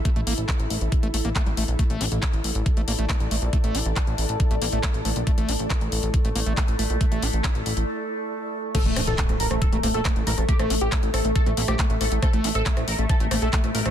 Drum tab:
CC |----------------|----------------|----------------|----------------|
HH |xxoxxxoxxxoxxxox|xxoxxxoxxxoxxxox|xxoxxxoxxxoxxxox|xxoxxxoxxxoxxxox|
CP |----x-------x---|----x-------x---|----x-------x---|----x-------x---|
SD |----------------|----------------|----------------|----------------|
BD |o---o---o---o---|o---o---o---o---|o---o---o---o---|o---o---o---o---|

CC |----------------|x---------------|----------------|----------------|
HH |xxoxxxox--------|xxoxxxoxxxoxxxox|xxoxxxoxxxoxxxox|xxoxxxoxxxoxxxox|
CP |----x-----------|----x-------x---|----x-------x---|----x-------x---|
SD |----------------|r-r--r-r--r-r--r|-r--r-r--r-r--r-|r--r-r--r-r--r-r|
BD |o---o-----------|o---o---o---o---|o---o---o---o---|o---o---o---o---|